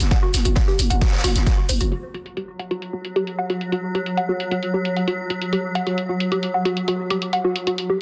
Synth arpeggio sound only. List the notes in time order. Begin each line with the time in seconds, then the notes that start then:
0.11 F#5
0.23 F#4
0.45 F#4
0.68 G4
0.90 F#5
1.02 F#4
1.24 F#4
1.47 F#4
1.58 F#4
1.69 C5
1.81 F#4
1.92 F#4
2.14 F#4
2.37 G4
2.59 F#5
2.71 F#4
2.93 F#4
3.16 G4
3.39 F#5
3.50 F#4
3.72 F#4
3.95 G4
4.17 F#5
4.29 F#4
4.51 F#4
4.74 G4
4.97 F#5
5.08 F#4
5.30 F#4
5.53 G4
5.75 F#5
5.87 F#4
6.09 F#4
6.32 G4
6.54 F#5
6.65 F#4
6.88 F#4
7.11 G4
7.33 F#5
7.44 F#4
7.67 F#4
7.90 G4